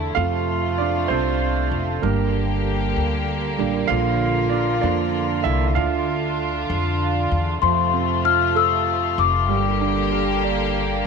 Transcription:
Already playing: upright bass E2, string section D3 A3 E4, grand piano F3 A3 D4 E4 A4
0.15 upright bass F2, string section C3 A3 F4, grand piano A3 C4 F4 F5
0.78 grand piano D4 D5
1.08 upright bass C2, grand piano C4 C5
1.71 upright bass F1
2.02 upright bass G1, string section D3 A#3 G4, grand piano G3 A#3 D4 A#4
2.96 upright bass D2
3.58 upright bass A1, grand piano G3 A#3 D4
3.87 upright bass A#1, grand piano F3 A#3 D4 F4 F5, string section F4
4.50 grand piano D4 D5
4.81 upright bass F2, grand piano F3 A#3 D4 D5
5.44 upright bass C2, grand piano E4 E5
5.68 grand piano E5
5.75 upright bass D2, grand piano D3 D4 F4 E5 F5, string section D4 F4
6.70 upright bass F2
7.31 upright bass E2
7.62 upright bass F2, string section C3 A3 F4, grand piano F3, celesta C6
7.94 grand piano C4
8.25 grand piano F4, celesta F6
8.56 grand piano A4, celesta E6
9.18 upright bass F1, celesta D6
9.48 upright bass G1, string section D3 A#3 G4, grand piano G3
9.81 grand piano D4
10.12 grand piano A#4
10.44 grand piano D5

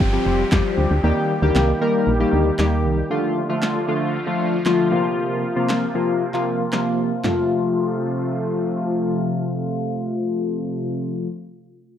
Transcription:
Already playing: analog synth pad F3 G3 C4 G4, downlifter
0.00 fm bass G1, kick
0.13 analog polysynth F3 G3 C4 G4
0.26 fm bass F1
0.52 fm bass F2, analog polysynth F3 G3 C4 G4, kick, snare, clap
0.78 fm bass D2
0.91 fm bass D2
1.03 fm bass D#2, analog polysynth D#3 G3 A#3 G4, analog synth pad D#3 G3 A#3
1.42 fm bass D2, analog polysynth D#3 G3 A#3 G4
1.55 fm bass C2, snare, clap
1.81 analog polysynth D#3 G3 A#3 A#4
2.07 fm bass A#1
2.20 analog polysynth D#3 G3 A#3 G4
2.33 fm bass D2
2.59 fm bass D#2, analog polysynth D#3 G3 A#3 G4, snare, clap
2.85 fm bass C2
3.10 analog polysynth D3 F3 A3 F4, analog synth pad D3 F3 A3 F4
3.49 analog polysynth D3 F3 A3 F4
3.62 snare, clap
3.88 analog polysynth D3 F3 A3 F4
4.27 analog polysynth D3 F3 A3 F4
4.65 analog polysynth D3 F3 A3 F4, snare, clap
4.91 analog polysynth C3 F3 A#3 F4, analog synth pad C3 A#3
5.56 analog polysynth C3 F3 A#3 F4
5.69 snare, clap
5.95 analog polysynth C3 F3 A#3 F4
6.34 analog polysynth C3 F3 A#3 F4, clap
6.72 analog polysynth C3 F3 A#3 F4, snare, clap
7.24 analog synth pad C3 F3 A3 F4, analog polysynth C3 F3 A3 F4, snare, clap, floor tom

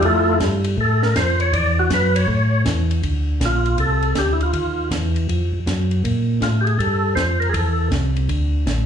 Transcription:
0.02 tonewheel organ F2 A3 E4 F4 A4, kick, ride
0.40 tonewheel organ G2, kick, snare, hi-hat pedal, ride
0.64 ride
0.77 tonewheel organ A2 A4, kick
1.03 tonewheel organ A#4, snare
1.15 tonewheel organ F2 C5, kick, snare, hi-hat pedal, ride
1.40 tonewheel organ C#5, ride
1.53 tonewheel organ E2 D5, kick, ride
1.79 tonewheel organ F#4
1.90 tonewheel organ F#2 B4, kick, snare, hi-hat pedal, ride
2.15 tonewheel organ C#5, ride
2.28 tonewheel organ A2, kick
2.66 tonewheel organ E2, kick, snare, hi-hat pedal, ride
2.91 ride
3.03 tonewheel organ D2, kick, ride
3.40 tonewheel organ A#1, kick, snare, hi-hat pedal, ride
3.45 tonewheel organ F4
3.66 ride
3.78 tonewheel organ C2 A4, kick, ride
4.03 ride
4.15 tonewheel organ D2 G4, kick, snare, hi-hat pedal, ride
4.33 tonewheel organ E4
4.41 tonewheel organ F4, ride
4.53 tonewheel organ D#2, kick, ride
4.91 tonewheel organ E2, kick, snare, hi-hat pedal, ride
5.16 ride
5.29 tonewheel organ F2, kick, ride
5.53 tonewheel organ F2
5.66 tonewheel organ F#2, kick, snare, hi-hat pedal, ride
5.91 ride
6.04 tonewheel organ A#2, kick, ride
6.41 tonewheel organ A2 F4, kick, snare, hi-hat pedal, ride
6.61 tonewheel organ G4 G#4
6.67 ride
6.79 tonewheel organ G2 A4, kick, ride
7.15 tonewheel organ F2 C5, kick, snare, hi-hat pedal, ride
7.40 tonewheel organ A#4, ride
7.49 tonewheel organ G#4 A4
7.54 tonewheel organ E2, kick, ride
7.91 tonewheel organ C2, kick, snare, hi-hat pedal, ride
8.16 ride
8.29 tonewheel organ D2, kick, ride
8.66 tonewheel organ A1, kick, snare, hi-hat pedal, ride

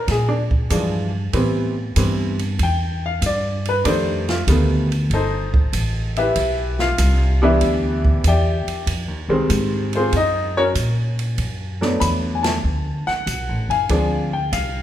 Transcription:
0.08 upright bass A#2, grand piano G#4, kick, snare, ride
0.29 grand piano D4
0.51 kick
0.70 upright bass G2, grand piano E3 F3 G#3 D4, kick, hi-hat pedal, ride
1.33 upright bass A2, grand piano E3 G3 B3 C4, kick, ride
1.96 upright bass G2, grand piano E3 G3 B3 C4, kick, hi-hat pedal, ride
2.39 ride
2.59 upright bass E2, kick, ride
2.63 grand piano G5
3.06 grand piano F5
3.22 upright bass G2, kick, hi-hat pedal, ride
3.26 grand piano D5
3.65 grand piano B4, ride
3.84 upright bass F2, grand piano D#3 G3 A3 D4 C5, kick, ride
4.29 grand piano F4, snare, ride
4.47 upright bass D2, grand piano D#3 G3 A3 B3, kick, hi-hat pedal, ride
4.92 ride
5.10 upright bass G1, grand piano A4 C5 D#5, kick, ride
5.14 grand piano D#4
5.54 kick
5.73 upright bass A1, kick, hi-hat pedal, ride
6.16 grand piano E4 G4 B4 E5, ride
6.36 upright bass B1, kick, ride
6.79 grand piano F4 F5, snare
6.98 upright bass C2, kick, hi-hat pedal, ride
7.42 grand piano E3 G3 B3 D4 E4 G4 B4 E5
7.61 upright bass D2, kick, ride
8.05 kick
8.24 upright bass E2, grand piano G4 G5, kick, hi-hat pedal, ride
8.28 grand piano D5 E5
8.67 muted upright bass stroke, ride
8.86 upright bass F2, kick, ride
9.08 upright bass D#2
9.28 upright bass C2, grand piano D#3 G3 G#3 C4
9.50 upright bass G#2, kick, hi-hat pedal, ride
9.93 grand piano F4 G#4 C5, ride
9.97 grand piano C4
10.12 upright bass F#2, kick, ride
10.17 grand piano D#4 D#5
10.57 grand piano C#4 F#4 A#4 C#5
10.75 upright bass A#2, kick, hi-hat pedal, ride
11.19 ride
11.38 upright bass F#2, kick, ride
11.81 grand piano F#3 A3 B3 D4, snare
12.00 upright bass E2, grand piano B5, kick, hi-hat pedal, ride
12.35 grand piano G#5
12.43 grand piano A5, snare, ride
12.64 upright bass D2
13.07 grand piano F#5, muted upright bass stroke, snare
13.27 upright bass B1, kick, hi-hat pedal, ride
13.48 upright bass A1
13.69 upright bass F#1, grand piano F5 G#5, ride
13.89 upright bass D2, grand piano F3 G#3 C4 D4, kick, ride
14.33 grand piano G5
14.52 upright bass C2, grand piano F5, kick, hi-hat pedal, ride

